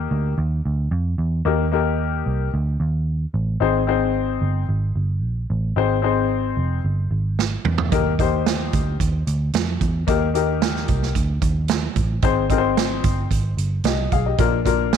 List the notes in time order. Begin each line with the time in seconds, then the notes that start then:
Already playing: A#3 D#4 G4 A#4
0.11 D2
0.38 D#2
0.65 D2
0.91 F2
1.18 E2
1.45 D#2 A#3 D#4 G4 A#4
1.72 A#3 D#4 G4 A#4
2.26 C2
2.54 D2
2.80 D#2
3.34 A1
3.60 G#1 C4 D#4 G#4 C5
3.87 C4 D#4 G#4 C5
4.42 G1
4.69 G#1
4.96 G1
5.23 A#1
5.50 A1
5.76 G#1 C4 D#4 G#4 C5
6.02 C4 D#4 G#4 C5
6.57 F1
6.84 G1
7.11 G#1
7.39 snare
7.65 E2, mid tom
7.78 floor tom
7.92 D#2 A#3 D#4 G4 A#4, kick, closed hi-hat
8.19 A#3 D#4 G4 C5, kick, closed hi-hat
8.46 snare, closed hi-hat
8.73 D2, kick, closed hi-hat
9.00 D#2, kick, closed hi-hat
9.27 D2, closed hi-hat
9.53 F2, snare, closed hi-hat
9.81 E2, kick, closed hi-hat
10.07 D#2 A#3 D#4 G4 A#4, kick, closed hi-hat
10.34 A#3 D#4 G4 A#4, closed hi-hat
10.62 snare, closed hi-hat
10.76 snare
10.88 C2, kick, closed hi-hat
11.03 snare
11.15 D2, kick, closed hi-hat
11.42 D#2, kick, closed hi-hat
11.68 snare, closed hi-hat
11.96 A1, kick, closed hi-hat
12.22 G#1 C4 D#4 G#4 C5, kick, closed hi-hat
12.50 C4 D#4 G#4 A#4, kick, closed hi-hat
12.58 C5
12.77 snare, closed hi-hat
13.04 G1, kick, closed hi-hat
13.31 G#1, kick, closed hi-hat
13.57 G1, closed hi-hat
13.84 C2 G4 D#5, snare, closed hi-hat
14.12 B1 G#4 F5, kick, closed hi-hat
14.26 G4 D#5
14.38 A#1 A#3 D4 F4 A#4, kick, closed hi-hat
14.65 A#3 D4 F4 A#4, kick, closed hi-hat
14.93 snare, closed hi-hat